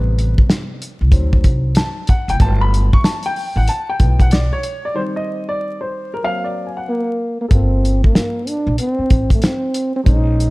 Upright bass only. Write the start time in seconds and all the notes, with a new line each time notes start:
Already playing: A1
1.01 C2
1.12 D2
1.44 C2
2.28 F#1
2.40 G1
3.56 A1
4.00 B1
7.51 G1
8.67 A#1
8.99 muted upright bass stroke
9.11 A1
10.06 A#1